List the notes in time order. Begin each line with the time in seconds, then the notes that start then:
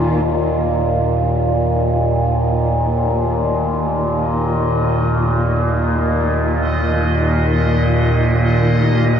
Already playing: D#2 A#2 D#3 A#3 F4
0.24 D#2 A#2 D#5